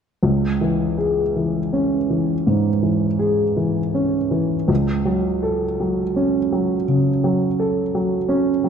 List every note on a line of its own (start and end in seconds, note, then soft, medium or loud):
0.23 2.43 C#2 soft
0.61 1.21 E3 soft
0.98 1.58 G#4 soft
1.36 1.96 E3 soft
1.73 2.32 C#4 soft
2.10 2.69 E3 soft
2.47 3.05 G#2 soft
2.83 3.42 E3 soft
3.19 3.80 G#4 soft
3.57 4.17 E3 soft
3.94 4.54 C#4 soft
4.31 4.69 E3 soft
4.68 6.84 C#2 soft
5.05 5.65 F#3 soft
5.43 6.02 A4 soft
5.80 6.38 F#3 soft
6.16 6.74 C#4 soft
6.52 7.10 F#3 soft
6.88 7.45 C#3 soft
7.24 7.80 F#3 soft
7.59 8.15 A4 soft
7.95 8.50 F#3 soft
8.29 8.69 C#4 soft
8.64 8.69 F#3 soft